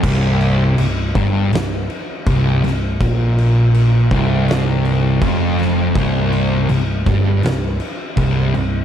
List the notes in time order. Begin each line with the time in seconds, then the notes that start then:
0.03 C1 C2, kick, crash
0.41 crash
0.78 C1 C2, crash
1.15 G1 G2, kick, crash
1.52 C1 C2, snare, crash
1.90 crash
2.27 C1 C2, kick, crash
2.62 C1 C2, crash
2.67 snare
3.01 A#1 A#2, kick, crash
3.38 crash
3.74 crash
4.11 C1 C2, kick, crash
4.48 snare, crash
4.85 crash
5.21 F1 F2, kick, crash
5.59 snare, crash
5.95 C1 C2, kick, crash
6.33 crash
6.68 C1 C2, crash
7.06 G1 G2, kick, crash
7.43 C1 C2, snare, crash
7.80 crash
8.17 C1 C2, kick, crash
8.55 C1 C2, crash